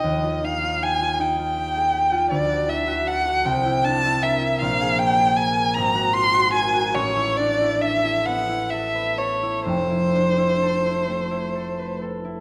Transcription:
Already playing: D#4 G4 D#5
0.04 D#2
0.24 F4
0.44 D#4 F5
0.63 F4
0.81 G4 G#5
1.01 F4
1.20 D#4 G5
1.39 F4
1.57 G4
1.76 G#4
1.94 G4
2.12 F4
2.31 D2 D5
2.49 F#4
2.68 E4 E5
2.87 F#4
3.06 A4 F#5
3.26 F#4
3.45 C2 G5
3.65 E4
3.84 D4 A5
4.05 E4
4.23 A#4 E5
4.41 E4
4.61 A#1 F5
4.81 G#4
4.99 G4 G5
5.19 G#4
5.37 A#4 G#5
5.58 G#4
5.74 G#1 A#5
5.95 F#4
6.13 F4 C6
6.34 F#4
6.53 A#4 G#5
6.74 F#4
6.95 A1 C#5
7.16 E4
7.37 D4 D5
7.61 E4
7.81 A4 E5
8.04 E4
8.26 B3 F#5
8.49 E4
8.70 A4 E5
8.95 B4
9.19 A4 C#5
9.43 E4
9.66 F1 C5
9.90 E4
10.15 D4
10.38 E4
10.62 A4
10.85 E4
11.08 A3
11.31 E4
11.55 A4
11.79 B4
12.02 A4
12.25 E4

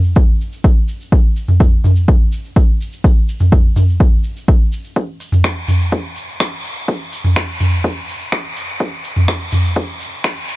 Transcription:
0.04 shaker
0.15 kick, shaker
0.41 shaker
0.52 shaker
0.64 kick, shaker
0.88 shaker
1.01 shaker
1.12 kick, shaker
1.36 shaker
1.48 mid tom, shaker
1.60 kick, shaker
1.84 mid tom, shaker
1.96 shaker
2.08 kick, shaker
2.32 shaker
2.45 shaker
2.56 kick, shaker
2.81 shaker
2.92 shaker
3.04 kick, shaker
3.29 shaker
3.39 mid tom, shaker
3.52 kick, shaker
3.76 mid tom, shaker
3.89 shaker
4.00 kick, shaker
4.23 shaker
4.36 shaker
4.48 kick, shaker
4.73 shaker
4.85 shaker
4.96 kick, shaker
5.20 open hi-hat, shaker
5.32 mid tom, shaker
5.44 finger snap, kick, shaker
5.68 mid tom, open hi-hat, shaker
5.81 shaker
5.92 kick, shaker
6.16 open hi-hat, shaker
6.28 shaker
6.40 finger snap, kick, shaker
6.64 open hi-hat, shaker
6.77 shaker
6.88 kick, shaker
7.12 open hi-hat, shaker
7.24 mid tom, shaker
7.35 finger snap, kick, shaker
7.60 mid tom, open hi-hat, shaker
7.72 shaker
7.84 kick, shaker
8.08 open hi-hat, shaker
8.20 shaker
8.32 finger snap, kick, shaker
8.56 open hi-hat, shaker
8.68 shaker
8.80 kick, shaker
9.04 open hi-hat, shaker
9.16 mid tom, shaker
9.28 finger snap, kick, shaker
9.52 mid tom, open hi-hat, shaker
9.65 shaker
9.76 kick, shaker
10.00 open hi-hat, shaker
10.12 shaker
10.24 finger snap, kick, shaker
10.48 open hi-hat, shaker

